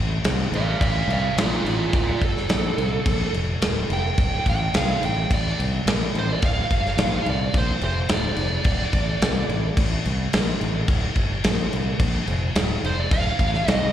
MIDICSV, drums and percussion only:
0, 0, Header, 1, 2, 480
1, 0, Start_track
1, 0, Key_signature, -1, "minor"
1, 0, Tempo, 562324
1, 1657, Time_signature, 4, 2, 24, 8
1, 5013, Tempo, 557621
1, 11944, End_track
2, 0, Start_track
2, 0, Title_t, "Drums"
2, 207, Note_on_c, 9, 49, 90
2, 214, Note_on_c, 9, 38, 111
2, 293, Note_off_c, 9, 49, 0
2, 300, Note_off_c, 9, 38, 0
2, 457, Note_on_c, 9, 49, 59
2, 542, Note_off_c, 9, 49, 0
2, 692, Note_on_c, 9, 36, 113
2, 699, Note_on_c, 9, 49, 85
2, 777, Note_off_c, 9, 36, 0
2, 784, Note_off_c, 9, 49, 0
2, 941, Note_on_c, 9, 49, 53
2, 1026, Note_off_c, 9, 49, 0
2, 1176, Note_on_c, 9, 49, 82
2, 1182, Note_on_c, 9, 38, 118
2, 1261, Note_off_c, 9, 49, 0
2, 1268, Note_off_c, 9, 38, 0
2, 1419, Note_on_c, 9, 49, 59
2, 1505, Note_off_c, 9, 49, 0
2, 1649, Note_on_c, 9, 49, 74
2, 1650, Note_on_c, 9, 36, 118
2, 1735, Note_off_c, 9, 49, 0
2, 1736, Note_off_c, 9, 36, 0
2, 1891, Note_on_c, 9, 36, 90
2, 1895, Note_on_c, 9, 49, 60
2, 1976, Note_off_c, 9, 36, 0
2, 1980, Note_off_c, 9, 49, 0
2, 2022, Note_on_c, 9, 38, 35
2, 2107, Note_off_c, 9, 38, 0
2, 2127, Note_on_c, 9, 49, 80
2, 2133, Note_on_c, 9, 38, 116
2, 2212, Note_off_c, 9, 49, 0
2, 2219, Note_off_c, 9, 38, 0
2, 2374, Note_on_c, 9, 49, 58
2, 2459, Note_off_c, 9, 49, 0
2, 2611, Note_on_c, 9, 36, 117
2, 2611, Note_on_c, 9, 49, 91
2, 2696, Note_off_c, 9, 36, 0
2, 2696, Note_off_c, 9, 49, 0
2, 2854, Note_on_c, 9, 49, 58
2, 2939, Note_off_c, 9, 49, 0
2, 3087, Note_on_c, 9, 49, 85
2, 3094, Note_on_c, 9, 38, 120
2, 3172, Note_off_c, 9, 49, 0
2, 3179, Note_off_c, 9, 38, 0
2, 3329, Note_on_c, 9, 49, 65
2, 3414, Note_off_c, 9, 49, 0
2, 3564, Note_on_c, 9, 49, 80
2, 3568, Note_on_c, 9, 36, 106
2, 3650, Note_off_c, 9, 49, 0
2, 3654, Note_off_c, 9, 36, 0
2, 3807, Note_on_c, 9, 36, 86
2, 3807, Note_on_c, 9, 49, 69
2, 3892, Note_off_c, 9, 49, 0
2, 3893, Note_off_c, 9, 36, 0
2, 4046, Note_on_c, 9, 49, 84
2, 4053, Note_on_c, 9, 38, 116
2, 4132, Note_off_c, 9, 49, 0
2, 4139, Note_off_c, 9, 38, 0
2, 4291, Note_on_c, 9, 49, 66
2, 4377, Note_off_c, 9, 49, 0
2, 4530, Note_on_c, 9, 36, 111
2, 4534, Note_on_c, 9, 49, 86
2, 4616, Note_off_c, 9, 36, 0
2, 4620, Note_off_c, 9, 49, 0
2, 4779, Note_on_c, 9, 49, 59
2, 4864, Note_off_c, 9, 49, 0
2, 5011, Note_on_c, 9, 49, 84
2, 5018, Note_on_c, 9, 38, 120
2, 5097, Note_off_c, 9, 49, 0
2, 5104, Note_off_c, 9, 38, 0
2, 5252, Note_on_c, 9, 49, 58
2, 5338, Note_off_c, 9, 49, 0
2, 5485, Note_on_c, 9, 49, 80
2, 5490, Note_on_c, 9, 36, 120
2, 5571, Note_off_c, 9, 49, 0
2, 5576, Note_off_c, 9, 36, 0
2, 5731, Note_on_c, 9, 36, 83
2, 5731, Note_on_c, 9, 49, 65
2, 5817, Note_off_c, 9, 36, 0
2, 5817, Note_off_c, 9, 49, 0
2, 5859, Note_on_c, 9, 38, 37
2, 5945, Note_off_c, 9, 38, 0
2, 5965, Note_on_c, 9, 49, 78
2, 5972, Note_on_c, 9, 38, 119
2, 6051, Note_off_c, 9, 49, 0
2, 6058, Note_off_c, 9, 38, 0
2, 6208, Note_on_c, 9, 49, 53
2, 6294, Note_off_c, 9, 49, 0
2, 6449, Note_on_c, 9, 49, 78
2, 6450, Note_on_c, 9, 36, 115
2, 6536, Note_off_c, 9, 36, 0
2, 6536, Note_off_c, 9, 49, 0
2, 6683, Note_on_c, 9, 49, 59
2, 6769, Note_off_c, 9, 49, 0
2, 6919, Note_on_c, 9, 49, 78
2, 6926, Note_on_c, 9, 38, 120
2, 7006, Note_off_c, 9, 49, 0
2, 7012, Note_off_c, 9, 38, 0
2, 7157, Note_on_c, 9, 49, 67
2, 7243, Note_off_c, 9, 49, 0
2, 7397, Note_on_c, 9, 49, 87
2, 7404, Note_on_c, 9, 36, 118
2, 7483, Note_off_c, 9, 49, 0
2, 7490, Note_off_c, 9, 36, 0
2, 7642, Note_on_c, 9, 49, 70
2, 7646, Note_on_c, 9, 36, 88
2, 7728, Note_off_c, 9, 49, 0
2, 7732, Note_off_c, 9, 36, 0
2, 7891, Note_on_c, 9, 49, 83
2, 7898, Note_on_c, 9, 38, 120
2, 7977, Note_off_c, 9, 49, 0
2, 7984, Note_off_c, 9, 38, 0
2, 8130, Note_on_c, 9, 49, 63
2, 8216, Note_off_c, 9, 49, 0
2, 8368, Note_on_c, 9, 36, 124
2, 8370, Note_on_c, 9, 49, 91
2, 8454, Note_off_c, 9, 36, 0
2, 8457, Note_off_c, 9, 49, 0
2, 8612, Note_on_c, 9, 49, 63
2, 8698, Note_off_c, 9, 49, 0
2, 8850, Note_on_c, 9, 49, 91
2, 8857, Note_on_c, 9, 38, 123
2, 8936, Note_off_c, 9, 49, 0
2, 8943, Note_off_c, 9, 38, 0
2, 9091, Note_on_c, 9, 49, 62
2, 9177, Note_off_c, 9, 49, 0
2, 9322, Note_on_c, 9, 49, 84
2, 9325, Note_on_c, 9, 36, 120
2, 9409, Note_off_c, 9, 49, 0
2, 9411, Note_off_c, 9, 36, 0
2, 9560, Note_on_c, 9, 49, 65
2, 9563, Note_on_c, 9, 36, 81
2, 9646, Note_off_c, 9, 49, 0
2, 9649, Note_off_c, 9, 36, 0
2, 9804, Note_on_c, 9, 49, 84
2, 9811, Note_on_c, 9, 38, 118
2, 9890, Note_off_c, 9, 49, 0
2, 9897, Note_off_c, 9, 38, 0
2, 10052, Note_on_c, 9, 49, 60
2, 10138, Note_off_c, 9, 49, 0
2, 10285, Note_on_c, 9, 36, 112
2, 10286, Note_on_c, 9, 49, 85
2, 10371, Note_off_c, 9, 36, 0
2, 10372, Note_off_c, 9, 49, 0
2, 10523, Note_on_c, 9, 49, 58
2, 10609, Note_off_c, 9, 49, 0
2, 10764, Note_on_c, 9, 49, 83
2, 10771, Note_on_c, 9, 38, 120
2, 10850, Note_off_c, 9, 49, 0
2, 10857, Note_off_c, 9, 38, 0
2, 11014, Note_on_c, 9, 49, 62
2, 11100, Note_off_c, 9, 49, 0
2, 11245, Note_on_c, 9, 49, 83
2, 11246, Note_on_c, 9, 36, 120
2, 11331, Note_off_c, 9, 49, 0
2, 11332, Note_off_c, 9, 36, 0
2, 11486, Note_on_c, 9, 36, 85
2, 11487, Note_on_c, 9, 49, 65
2, 11572, Note_off_c, 9, 36, 0
2, 11573, Note_off_c, 9, 49, 0
2, 11613, Note_on_c, 9, 38, 35
2, 11699, Note_off_c, 9, 38, 0
2, 11731, Note_on_c, 9, 49, 84
2, 11738, Note_on_c, 9, 38, 122
2, 11817, Note_off_c, 9, 49, 0
2, 11824, Note_off_c, 9, 38, 0
2, 11944, End_track
0, 0, End_of_file